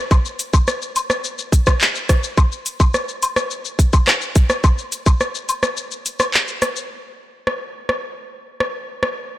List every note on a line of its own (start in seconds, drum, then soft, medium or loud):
0.11 kick loud
0.11 high woodblock medium
0.11 shaker medium
0.25 shaker medium
0.39 closed hi-hat medium
0.39 cabasa medium
0.39 shaker medium
0.54 kick medium
0.54 high woodblock medium
0.54 shaker medium
0.68 cross-stick medium
0.68 shaker medium
0.82 shaker soft
0.96 closed hi-hat medium
0.96 cabasa medium
0.96 high woodblock medium
0.96 shaker medium
1.10 cross-stick loud
1.10 shaker medium
1.24 shaker medium
1.39 shaker medium
1.52 kick medium
1.52 closed hi-hat medium
1.52 cabasa medium
1.52 shaker medium
1.67 kick loud
1.67 cross-stick loud
1.67 high woodblock medium
1.67 shaker medium
1.81 clap loud
1.81 shaker medium
1.95 shaker soft
2.09 kick loud
2.09 cross-stick medium
2.09 closed hi-hat medium
2.09 cabasa medium
2.09 shaker medium
2.23 shaker medium
2.37 kick loud
2.37 high woodblock medium
2.37 shaker medium
2.52 shaker soft
2.66 closed hi-hat medium
2.66 cabasa medium
2.66 shaker medium
2.80 kick loud
2.80 high woodblock medium
2.80 shaker medium
2.94 cross-stick medium
2.94 shaker medium
3.09 shaker soft
3.22 closed hi-hat medium
3.22 cabasa medium
3.22 high woodblock medium
3.22 shaker medium
3.36 cross-stick loud
3.36 shaker medium
3.51 shaker medium
3.65 shaker medium
3.79 kick medium
3.79 closed hi-hat medium
3.79 cabasa medium
3.79 shaker medium
3.93 kick loud
3.93 high woodblock medium
3.93 shaker medium
4.07 cross-stick medium
4.07 clap loud
4.07 shaker medium
4.21 shaker soft
4.35 kick loud
4.35 closed hi-hat medium
4.35 cabasa medium
4.35 shaker medium
4.50 cross-stick loud
4.50 shaker medium
4.64 kick loud
4.64 high woodblock medium
4.64 shaker medium
4.78 shaker soft
4.92 closed hi-hat medium
4.92 cabasa medium
4.92 shaker medium
5.06 kick loud
5.06 high woodblock medium
5.06 shaker medium
5.21 cross-stick medium
5.21 shaker medium
5.35 shaker medium
5.49 closed hi-hat medium
5.49 cabasa medium
5.49 high woodblock medium
5.49 shaker medium
5.63 cross-stick loud
5.63 shaker medium
5.77 shaker medium
5.91 shaker medium
6.06 closed hi-hat medium
6.06 cabasa medium
6.06 shaker medium
6.20 cross-stick loud
6.20 high woodblock medium
6.20 shaker medium
6.34 clap loud
6.34 shaker medium
6.48 shaker soft
6.62 cross-stick loud
6.62 closed hi-hat medium
6.62 cabasa medium
6.62 shaker medium
6.76 shaker medium
7.47 cross-stick medium
7.89 cross-stick medium
8.60 cross-stick medium
9.03 cross-stick medium